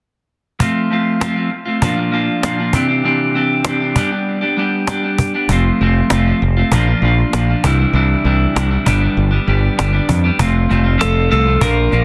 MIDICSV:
0, 0, Header, 1, 6, 480
1, 0, Start_track
1, 0, Tempo, 611621
1, 479, Time_signature, 4, 2, 24, 8
1, 9453, End_track
2, 0, Start_track
2, 0, Title_t, "Lead electric guitar"
2, 0, Program_c, 0, 29
2, 8639, Note_on_c, 0, 69, 71
2, 8862, Note_off_c, 0, 69, 0
2, 8880, Note_on_c, 0, 69, 78
2, 9102, Note_off_c, 0, 69, 0
2, 9119, Note_on_c, 0, 70, 77
2, 9453, Note_off_c, 0, 70, 0
2, 9453, End_track
3, 0, Start_track
3, 0, Title_t, "Clean electric guitar"
3, 0, Program_c, 1, 27
3, 464, Note_on_c, 1, 53, 59
3, 475, Note_on_c, 1, 57, 72
3, 478, Note_on_c, 1, 60, 68
3, 483, Note_on_c, 1, 65, 70
3, 700, Note_off_c, 1, 53, 0
3, 708, Note_off_c, 1, 57, 0
3, 709, Note_on_c, 1, 53, 59
3, 712, Note_off_c, 1, 60, 0
3, 717, Note_on_c, 1, 57, 61
3, 719, Note_off_c, 1, 65, 0
3, 721, Note_on_c, 1, 60, 60
3, 728, Note_on_c, 1, 65, 68
3, 934, Note_off_c, 1, 53, 0
3, 941, Note_off_c, 1, 57, 0
3, 944, Note_on_c, 1, 53, 75
3, 947, Note_off_c, 1, 60, 0
3, 950, Note_on_c, 1, 57, 76
3, 953, Note_off_c, 1, 65, 0
3, 956, Note_on_c, 1, 60, 74
3, 962, Note_on_c, 1, 65, 75
3, 1057, Note_off_c, 1, 65, 0
3, 1066, Note_on_c, 1, 65, 58
3, 1067, Note_off_c, 1, 60, 0
3, 1074, Note_off_c, 1, 57, 0
3, 1077, Note_on_c, 1, 60, 50
3, 1084, Note_on_c, 1, 57, 49
3, 1177, Note_off_c, 1, 53, 0
3, 1179, Note_off_c, 1, 57, 0
3, 1179, Note_off_c, 1, 60, 0
3, 1182, Note_off_c, 1, 65, 0
3, 1299, Note_on_c, 1, 65, 57
3, 1312, Note_on_c, 1, 60, 47
3, 1318, Note_on_c, 1, 57, 52
3, 1414, Note_off_c, 1, 65, 0
3, 1420, Note_off_c, 1, 60, 0
3, 1420, Note_on_c, 1, 46, 81
3, 1424, Note_off_c, 1, 57, 0
3, 1427, Note_on_c, 1, 53, 79
3, 1432, Note_on_c, 1, 58, 77
3, 1434, Note_on_c, 1, 62, 84
3, 1438, Note_on_c, 1, 65, 90
3, 1527, Note_off_c, 1, 65, 0
3, 1537, Note_on_c, 1, 65, 59
3, 1540, Note_off_c, 1, 62, 0
3, 1545, Note_off_c, 1, 58, 0
3, 1549, Note_on_c, 1, 62, 54
3, 1554, Note_on_c, 1, 58, 45
3, 1648, Note_off_c, 1, 53, 0
3, 1655, Note_off_c, 1, 58, 0
3, 1657, Note_on_c, 1, 53, 55
3, 1663, Note_off_c, 1, 62, 0
3, 1665, Note_on_c, 1, 58, 66
3, 1666, Note_off_c, 1, 65, 0
3, 1672, Note_on_c, 1, 62, 72
3, 1676, Note_on_c, 1, 65, 66
3, 1789, Note_off_c, 1, 46, 0
3, 1898, Note_off_c, 1, 53, 0
3, 1900, Note_off_c, 1, 58, 0
3, 1902, Note_on_c, 1, 46, 68
3, 1905, Note_off_c, 1, 62, 0
3, 1907, Note_off_c, 1, 65, 0
3, 1907, Note_on_c, 1, 53, 74
3, 1909, Note_on_c, 1, 58, 66
3, 1914, Note_on_c, 1, 62, 81
3, 1917, Note_on_c, 1, 65, 75
3, 2016, Note_off_c, 1, 65, 0
3, 2026, Note_on_c, 1, 65, 56
3, 2029, Note_off_c, 1, 62, 0
3, 2035, Note_off_c, 1, 58, 0
3, 2038, Note_on_c, 1, 62, 61
3, 2044, Note_on_c, 1, 58, 47
3, 2135, Note_off_c, 1, 46, 0
3, 2137, Note_off_c, 1, 65, 0
3, 2138, Note_off_c, 1, 53, 0
3, 2143, Note_off_c, 1, 62, 0
3, 2144, Note_on_c, 1, 48, 73
3, 2146, Note_off_c, 1, 58, 0
3, 2147, Note_on_c, 1, 52, 85
3, 2153, Note_on_c, 1, 60, 87
3, 2154, Note_on_c, 1, 62, 74
3, 2160, Note_on_c, 1, 67, 78
3, 2255, Note_off_c, 1, 67, 0
3, 2264, Note_off_c, 1, 62, 0
3, 2264, Note_on_c, 1, 67, 58
3, 2273, Note_off_c, 1, 60, 0
3, 2273, Note_on_c, 1, 62, 52
3, 2282, Note_on_c, 1, 60, 54
3, 2373, Note_off_c, 1, 48, 0
3, 2380, Note_off_c, 1, 52, 0
3, 2382, Note_on_c, 1, 48, 60
3, 2383, Note_off_c, 1, 60, 0
3, 2386, Note_off_c, 1, 62, 0
3, 2389, Note_off_c, 1, 67, 0
3, 2389, Note_on_c, 1, 52, 75
3, 2392, Note_on_c, 1, 60, 73
3, 2395, Note_on_c, 1, 62, 69
3, 2399, Note_on_c, 1, 67, 76
3, 2614, Note_off_c, 1, 52, 0
3, 2622, Note_off_c, 1, 60, 0
3, 2623, Note_on_c, 1, 52, 67
3, 2629, Note_off_c, 1, 62, 0
3, 2632, Note_off_c, 1, 67, 0
3, 2632, Note_on_c, 1, 60, 74
3, 2638, Note_on_c, 1, 62, 69
3, 2642, Note_on_c, 1, 67, 71
3, 2851, Note_off_c, 1, 48, 0
3, 2859, Note_off_c, 1, 52, 0
3, 2860, Note_on_c, 1, 48, 69
3, 2862, Note_off_c, 1, 60, 0
3, 2865, Note_off_c, 1, 62, 0
3, 2868, Note_on_c, 1, 52, 82
3, 2871, Note_on_c, 1, 60, 83
3, 2872, Note_off_c, 1, 67, 0
3, 2874, Note_on_c, 1, 62, 79
3, 2882, Note_on_c, 1, 67, 79
3, 2974, Note_off_c, 1, 67, 0
3, 2983, Note_on_c, 1, 67, 62
3, 2989, Note_off_c, 1, 62, 0
3, 2997, Note_off_c, 1, 60, 0
3, 2998, Note_on_c, 1, 62, 56
3, 3006, Note_on_c, 1, 60, 47
3, 3094, Note_off_c, 1, 48, 0
3, 3096, Note_off_c, 1, 67, 0
3, 3098, Note_off_c, 1, 52, 0
3, 3103, Note_off_c, 1, 62, 0
3, 3106, Note_on_c, 1, 55, 82
3, 3107, Note_off_c, 1, 60, 0
3, 3114, Note_on_c, 1, 59, 88
3, 3117, Note_on_c, 1, 62, 86
3, 3120, Note_on_c, 1, 67, 88
3, 3214, Note_off_c, 1, 67, 0
3, 3223, Note_on_c, 1, 67, 58
3, 3224, Note_off_c, 1, 62, 0
3, 3232, Note_off_c, 1, 59, 0
3, 3233, Note_on_c, 1, 62, 55
3, 3241, Note_on_c, 1, 59, 57
3, 3453, Note_off_c, 1, 67, 0
3, 3462, Note_off_c, 1, 62, 0
3, 3462, Note_on_c, 1, 67, 62
3, 3470, Note_off_c, 1, 59, 0
3, 3471, Note_on_c, 1, 62, 54
3, 3472, Note_off_c, 1, 55, 0
3, 3480, Note_on_c, 1, 59, 46
3, 3585, Note_off_c, 1, 59, 0
3, 3585, Note_on_c, 1, 55, 65
3, 3589, Note_off_c, 1, 62, 0
3, 3594, Note_on_c, 1, 59, 71
3, 3595, Note_off_c, 1, 67, 0
3, 3599, Note_on_c, 1, 62, 66
3, 3604, Note_on_c, 1, 67, 64
3, 3813, Note_off_c, 1, 55, 0
3, 3822, Note_on_c, 1, 55, 64
3, 3823, Note_off_c, 1, 59, 0
3, 3826, Note_off_c, 1, 62, 0
3, 3831, Note_off_c, 1, 67, 0
3, 3833, Note_on_c, 1, 59, 61
3, 3836, Note_on_c, 1, 62, 78
3, 3841, Note_on_c, 1, 67, 86
3, 3937, Note_off_c, 1, 67, 0
3, 3946, Note_on_c, 1, 67, 60
3, 3947, Note_off_c, 1, 62, 0
3, 3951, Note_off_c, 1, 59, 0
3, 3956, Note_on_c, 1, 62, 52
3, 3961, Note_on_c, 1, 59, 50
3, 4182, Note_off_c, 1, 67, 0
3, 4188, Note_off_c, 1, 62, 0
3, 4190, Note_off_c, 1, 55, 0
3, 4191, Note_on_c, 1, 67, 55
3, 4196, Note_off_c, 1, 59, 0
3, 4197, Note_on_c, 1, 62, 55
3, 4206, Note_on_c, 1, 59, 52
3, 4300, Note_off_c, 1, 67, 0
3, 4303, Note_off_c, 1, 62, 0
3, 4307, Note_off_c, 1, 59, 0
3, 4313, Note_on_c, 1, 53, 69
3, 4320, Note_on_c, 1, 57, 71
3, 4326, Note_on_c, 1, 60, 79
3, 4329, Note_on_c, 1, 65, 80
3, 4549, Note_off_c, 1, 53, 0
3, 4554, Note_off_c, 1, 57, 0
3, 4559, Note_on_c, 1, 53, 70
3, 4564, Note_off_c, 1, 60, 0
3, 4564, Note_on_c, 1, 57, 71
3, 4566, Note_off_c, 1, 65, 0
3, 4574, Note_on_c, 1, 60, 71
3, 4576, Note_on_c, 1, 65, 65
3, 4784, Note_off_c, 1, 53, 0
3, 4793, Note_off_c, 1, 57, 0
3, 4794, Note_on_c, 1, 53, 82
3, 4796, Note_off_c, 1, 60, 0
3, 4800, Note_off_c, 1, 65, 0
3, 4803, Note_on_c, 1, 57, 71
3, 4805, Note_on_c, 1, 60, 75
3, 4810, Note_on_c, 1, 65, 86
3, 4899, Note_off_c, 1, 65, 0
3, 4908, Note_on_c, 1, 65, 68
3, 4912, Note_off_c, 1, 60, 0
3, 4918, Note_off_c, 1, 57, 0
3, 4922, Note_on_c, 1, 60, 54
3, 4927, Note_on_c, 1, 57, 52
3, 5023, Note_off_c, 1, 53, 0
3, 5024, Note_off_c, 1, 57, 0
3, 5028, Note_off_c, 1, 60, 0
3, 5032, Note_off_c, 1, 65, 0
3, 5154, Note_on_c, 1, 65, 65
3, 5165, Note_on_c, 1, 60, 51
3, 5172, Note_on_c, 1, 57, 48
3, 5261, Note_off_c, 1, 65, 0
3, 5266, Note_off_c, 1, 60, 0
3, 5270, Note_off_c, 1, 57, 0
3, 5273, Note_on_c, 1, 46, 82
3, 5278, Note_on_c, 1, 53, 80
3, 5284, Note_on_c, 1, 58, 77
3, 5287, Note_on_c, 1, 62, 95
3, 5292, Note_on_c, 1, 65, 85
3, 5382, Note_off_c, 1, 65, 0
3, 5392, Note_on_c, 1, 65, 70
3, 5394, Note_off_c, 1, 62, 0
3, 5400, Note_off_c, 1, 58, 0
3, 5403, Note_on_c, 1, 62, 55
3, 5409, Note_on_c, 1, 58, 51
3, 5504, Note_off_c, 1, 53, 0
3, 5513, Note_off_c, 1, 58, 0
3, 5514, Note_on_c, 1, 53, 67
3, 5519, Note_off_c, 1, 62, 0
3, 5522, Note_off_c, 1, 65, 0
3, 5522, Note_on_c, 1, 58, 68
3, 5528, Note_on_c, 1, 62, 67
3, 5531, Note_on_c, 1, 65, 80
3, 5635, Note_off_c, 1, 46, 0
3, 5746, Note_off_c, 1, 53, 0
3, 5747, Note_off_c, 1, 58, 0
3, 5748, Note_on_c, 1, 46, 74
3, 5752, Note_off_c, 1, 62, 0
3, 5755, Note_on_c, 1, 53, 82
3, 5756, Note_off_c, 1, 65, 0
3, 5757, Note_on_c, 1, 58, 74
3, 5762, Note_on_c, 1, 62, 77
3, 5765, Note_on_c, 1, 65, 76
3, 5871, Note_off_c, 1, 65, 0
3, 5878, Note_off_c, 1, 62, 0
3, 5880, Note_on_c, 1, 65, 61
3, 5885, Note_off_c, 1, 58, 0
3, 5887, Note_on_c, 1, 62, 60
3, 5894, Note_on_c, 1, 58, 49
3, 5978, Note_off_c, 1, 46, 0
3, 5982, Note_off_c, 1, 53, 0
3, 5984, Note_off_c, 1, 65, 0
3, 5988, Note_off_c, 1, 62, 0
3, 5990, Note_on_c, 1, 48, 69
3, 5992, Note_off_c, 1, 58, 0
3, 5994, Note_on_c, 1, 52, 79
3, 5999, Note_on_c, 1, 55, 79
3, 6000, Note_on_c, 1, 62, 80
3, 6006, Note_on_c, 1, 64, 90
3, 6102, Note_off_c, 1, 64, 0
3, 6111, Note_on_c, 1, 64, 60
3, 6114, Note_off_c, 1, 62, 0
3, 6122, Note_off_c, 1, 55, 0
3, 6123, Note_on_c, 1, 62, 53
3, 6132, Note_on_c, 1, 55, 49
3, 6219, Note_off_c, 1, 48, 0
3, 6226, Note_off_c, 1, 52, 0
3, 6227, Note_off_c, 1, 55, 0
3, 6228, Note_on_c, 1, 48, 66
3, 6229, Note_off_c, 1, 62, 0
3, 6234, Note_off_c, 1, 64, 0
3, 6236, Note_on_c, 1, 52, 77
3, 6236, Note_on_c, 1, 55, 75
3, 6238, Note_on_c, 1, 62, 89
3, 6243, Note_on_c, 1, 64, 87
3, 6460, Note_off_c, 1, 52, 0
3, 6467, Note_off_c, 1, 55, 0
3, 6470, Note_on_c, 1, 52, 74
3, 6473, Note_off_c, 1, 62, 0
3, 6476, Note_on_c, 1, 55, 67
3, 6478, Note_off_c, 1, 64, 0
3, 6482, Note_on_c, 1, 62, 76
3, 6487, Note_on_c, 1, 64, 77
3, 6701, Note_off_c, 1, 48, 0
3, 6705, Note_off_c, 1, 52, 0
3, 6710, Note_on_c, 1, 48, 81
3, 6713, Note_off_c, 1, 55, 0
3, 6714, Note_on_c, 1, 52, 71
3, 6716, Note_off_c, 1, 62, 0
3, 6717, Note_off_c, 1, 64, 0
3, 6722, Note_on_c, 1, 55, 83
3, 6726, Note_on_c, 1, 62, 87
3, 6726, Note_on_c, 1, 64, 80
3, 6820, Note_off_c, 1, 64, 0
3, 6827, Note_off_c, 1, 62, 0
3, 6830, Note_on_c, 1, 64, 57
3, 6836, Note_off_c, 1, 55, 0
3, 6836, Note_on_c, 1, 62, 53
3, 6846, Note_on_c, 1, 55, 50
3, 6939, Note_off_c, 1, 64, 0
3, 6940, Note_off_c, 1, 48, 0
3, 6942, Note_off_c, 1, 52, 0
3, 6942, Note_off_c, 1, 55, 0
3, 6943, Note_off_c, 1, 62, 0
3, 6943, Note_on_c, 1, 43, 77
3, 6948, Note_on_c, 1, 50, 89
3, 6951, Note_on_c, 1, 55, 81
3, 6956, Note_on_c, 1, 59, 92
3, 6961, Note_on_c, 1, 62, 95
3, 7056, Note_off_c, 1, 62, 0
3, 7066, Note_off_c, 1, 59, 0
3, 7066, Note_on_c, 1, 62, 62
3, 7073, Note_off_c, 1, 55, 0
3, 7075, Note_on_c, 1, 59, 56
3, 7083, Note_on_c, 1, 55, 51
3, 7296, Note_off_c, 1, 62, 0
3, 7306, Note_on_c, 1, 62, 68
3, 7308, Note_off_c, 1, 59, 0
3, 7310, Note_off_c, 1, 43, 0
3, 7313, Note_off_c, 1, 50, 0
3, 7315, Note_off_c, 1, 55, 0
3, 7317, Note_on_c, 1, 59, 52
3, 7324, Note_on_c, 1, 55, 50
3, 7427, Note_off_c, 1, 55, 0
3, 7431, Note_on_c, 1, 50, 69
3, 7432, Note_off_c, 1, 59, 0
3, 7436, Note_on_c, 1, 55, 74
3, 7442, Note_off_c, 1, 62, 0
3, 7442, Note_on_c, 1, 59, 63
3, 7451, Note_on_c, 1, 62, 73
3, 7666, Note_off_c, 1, 50, 0
3, 7669, Note_on_c, 1, 43, 83
3, 7670, Note_off_c, 1, 55, 0
3, 7673, Note_off_c, 1, 59, 0
3, 7675, Note_on_c, 1, 50, 65
3, 7676, Note_off_c, 1, 62, 0
3, 7679, Note_on_c, 1, 55, 75
3, 7682, Note_on_c, 1, 59, 81
3, 7685, Note_on_c, 1, 62, 82
3, 7782, Note_off_c, 1, 62, 0
3, 7791, Note_on_c, 1, 62, 70
3, 7792, Note_off_c, 1, 59, 0
3, 7798, Note_off_c, 1, 55, 0
3, 7801, Note_on_c, 1, 59, 60
3, 7807, Note_on_c, 1, 55, 47
3, 8026, Note_off_c, 1, 62, 0
3, 8034, Note_off_c, 1, 43, 0
3, 8034, Note_off_c, 1, 59, 0
3, 8035, Note_on_c, 1, 62, 68
3, 8037, Note_off_c, 1, 50, 0
3, 8040, Note_off_c, 1, 55, 0
3, 8044, Note_on_c, 1, 59, 64
3, 8049, Note_on_c, 1, 55, 54
3, 8142, Note_off_c, 1, 62, 0
3, 8147, Note_off_c, 1, 59, 0
3, 8149, Note_off_c, 1, 55, 0
3, 8152, Note_on_c, 1, 53, 69
3, 8157, Note_on_c, 1, 57, 80
3, 8164, Note_on_c, 1, 60, 77
3, 8168, Note_on_c, 1, 65, 82
3, 8382, Note_off_c, 1, 53, 0
3, 8387, Note_off_c, 1, 57, 0
3, 8391, Note_on_c, 1, 53, 62
3, 8392, Note_off_c, 1, 60, 0
3, 8396, Note_on_c, 1, 57, 71
3, 8397, Note_off_c, 1, 65, 0
3, 8401, Note_on_c, 1, 60, 73
3, 8407, Note_on_c, 1, 65, 79
3, 8496, Note_off_c, 1, 65, 0
3, 8503, Note_off_c, 1, 60, 0
3, 8505, Note_on_c, 1, 65, 59
3, 8512, Note_on_c, 1, 60, 58
3, 8513, Note_off_c, 1, 57, 0
3, 8523, Note_on_c, 1, 57, 44
3, 8607, Note_off_c, 1, 53, 0
3, 8615, Note_off_c, 1, 57, 0
3, 8616, Note_on_c, 1, 53, 82
3, 8622, Note_off_c, 1, 60, 0
3, 8624, Note_on_c, 1, 57, 70
3, 8626, Note_off_c, 1, 65, 0
3, 8631, Note_on_c, 1, 60, 75
3, 8635, Note_on_c, 1, 65, 97
3, 8853, Note_off_c, 1, 53, 0
3, 8861, Note_off_c, 1, 57, 0
3, 8863, Note_on_c, 1, 53, 68
3, 8867, Note_off_c, 1, 60, 0
3, 8871, Note_on_c, 1, 57, 71
3, 8874, Note_off_c, 1, 65, 0
3, 8877, Note_on_c, 1, 60, 69
3, 8884, Note_on_c, 1, 65, 79
3, 8981, Note_off_c, 1, 65, 0
3, 8990, Note_on_c, 1, 65, 68
3, 8991, Note_off_c, 1, 60, 0
3, 8998, Note_off_c, 1, 57, 0
3, 9001, Note_on_c, 1, 60, 53
3, 9008, Note_on_c, 1, 57, 57
3, 9096, Note_off_c, 1, 53, 0
3, 9100, Note_off_c, 1, 65, 0
3, 9105, Note_off_c, 1, 60, 0
3, 9108, Note_off_c, 1, 57, 0
3, 9108, Note_on_c, 1, 46, 80
3, 9113, Note_on_c, 1, 53, 96
3, 9120, Note_on_c, 1, 58, 77
3, 9121, Note_on_c, 1, 62, 94
3, 9128, Note_on_c, 1, 65, 87
3, 9338, Note_off_c, 1, 53, 0
3, 9346, Note_off_c, 1, 58, 0
3, 9348, Note_off_c, 1, 62, 0
3, 9348, Note_on_c, 1, 53, 65
3, 9354, Note_off_c, 1, 65, 0
3, 9356, Note_on_c, 1, 58, 75
3, 9357, Note_on_c, 1, 62, 68
3, 9364, Note_on_c, 1, 65, 72
3, 9453, Note_off_c, 1, 46, 0
3, 9453, Note_off_c, 1, 53, 0
3, 9453, Note_off_c, 1, 58, 0
3, 9453, Note_off_c, 1, 62, 0
3, 9453, Note_off_c, 1, 65, 0
3, 9453, End_track
4, 0, Start_track
4, 0, Title_t, "Fingered electric bass"
4, 0, Program_c, 2, 33
4, 4310, Note_on_c, 2, 29, 79
4, 4470, Note_off_c, 2, 29, 0
4, 4559, Note_on_c, 2, 29, 71
4, 4716, Note_off_c, 2, 29, 0
4, 4797, Note_on_c, 2, 29, 74
4, 4955, Note_off_c, 2, 29, 0
4, 5038, Note_on_c, 2, 29, 76
4, 5195, Note_off_c, 2, 29, 0
4, 5273, Note_on_c, 2, 34, 87
4, 5432, Note_off_c, 2, 34, 0
4, 5508, Note_on_c, 2, 34, 71
4, 5669, Note_off_c, 2, 34, 0
4, 5755, Note_on_c, 2, 34, 64
4, 5914, Note_off_c, 2, 34, 0
4, 5997, Note_on_c, 2, 36, 74
4, 6155, Note_off_c, 2, 36, 0
4, 6226, Note_on_c, 2, 36, 84
4, 6387, Note_off_c, 2, 36, 0
4, 6473, Note_on_c, 2, 36, 80
4, 6632, Note_off_c, 2, 36, 0
4, 6716, Note_on_c, 2, 36, 82
4, 6874, Note_off_c, 2, 36, 0
4, 6958, Note_on_c, 2, 31, 72
4, 7116, Note_off_c, 2, 31, 0
4, 7197, Note_on_c, 2, 31, 79
4, 7355, Note_off_c, 2, 31, 0
4, 7437, Note_on_c, 2, 31, 81
4, 7595, Note_off_c, 2, 31, 0
4, 7683, Note_on_c, 2, 31, 69
4, 7839, Note_off_c, 2, 31, 0
4, 7919, Note_on_c, 2, 41, 78
4, 8076, Note_off_c, 2, 41, 0
4, 8156, Note_on_c, 2, 29, 77
4, 8359, Note_off_c, 2, 29, 0
4, 8404, Note_on_c, 2, 29, 73
4, 8604, Note_off_c, 2, 29, 0
4, 8652, Note_on_c, 2, 29, 78
4, 8849, Note_off_c, 2, 29, 0
4, 8886, Note_on_c, 2, 36, 80
4, 9085, Note_off_c, 2, 36, 0
4, 9113, Note_on_c, 2, 34, 74
4, 9317, Note_off_c, 2, 34, 0
4, 9360, Note_on_c, 2, 34, 73
4, 9453, Note_off_c, 2, 34, 0
4, 9453, End_track
5, 0, Start_track
5, 0, Title_t, "Cajon"
5, 471, Note_on_c, 9, 36, 75
5, 550, Note_off_c, 9, 36, 0
5, 953, Note_on_c, 9, 38, 94
5, 1031, Note_off_c, 9, 38, 0
5, 1428, Note_on_c, 9, 36, 87
5, 1506, Note_off_c, 9, 36, 0
5, 1910, Note_on_c, 9, 38, 93
5, 1988, Note_off_c, 9, 38, 0
5, 2144, Note_on_c, 9, 36, 79
5, 2222, Note_off_c, 9, 36, 0
5, 2861, Note_on_c, 9, 38, 102
5, 2939, Note_off_c, 9, 38, 0
5, 3105, Note_on_c, 9, 36, 94
5, 3184, Note_off_c, 9, 36, 0
5, 3826, Note_on_c, 9, 38, 94
5, 3904, Note_off_c, 9, 38, 0
5, 4069, Note_on_c, 9, 36, 79
5, 4147, Note_off_c, 9, 36, 0
5, 4308, Note_on_c, 9, 36, 86
5, 4387, Note_off_c, 9, 36, 0
5, 4789, Note_on_c, 9, 38, 97
5, 4867, Note_off_c, 9, 38, 0
5, 5271, Note_on_c, 9, 36, 97
5, 5349, Note_off_c, 9, 36, 0
5, 5755, Note_on_c, 9, 38, 99
5, 5834, Note_off_c, 9, 38, 0
5, 5995, Note_on_c, 9, 36, 90
5, 6073, Note_off_c, 9, 36, 0
5, 6721, Note_on_c, 9, 38, 94
5, 6800, Note_off_c, 9, 38, 0
5, 6956, Note_on_c, 9, 36, 101
5, 7035, Note_off_c, 9, 36, 0
5, 7682, Note_on_c, 9, 38, 103
5, 7760, Note_off_c, 9, 38, 0
5, 7918, Note_on_c, 9, 36, 76
5, 7996, Note_off_c, 9, 36, 0
5, 8157, Note_on_c, 9, 36, 99
5, 8235, Note_off_c, 9, 36, 0
5, 8401, Note_on_c, 9, 38, 33
5, 8479, Note_off_c, 9, 38, 0
5, 8640, Note_on_c, 9, 38, 90
5, 8718, Note_off_c, 9, 38, 0
5, 8882, Note_on_c, 9, 38, 30
5, 8960, Note_off_c, 9, 38, 0
5, 9114, Note_on_c, 9, 36, 101
5, 9193, Note_off_c, 9, 36, 0
5, 9355, Note_on_c, 9, 38, 32
5, 9433, Note_off_c, 9, 38, 0
5, 9453, End_track
6, 0, Start_track
6, 0, Title_t, "Muted clean electric guitar strokes"
6, 1186, Note_on_c, 9, 29, 39
6, 1265, Note_off_c, 9, 29, 0
6, 5032, Note_on_c, 9, 29, 37
6, 5111, Note_off_c, 9, 29, 0
6, 9453, End_track
0, 0, End_of_file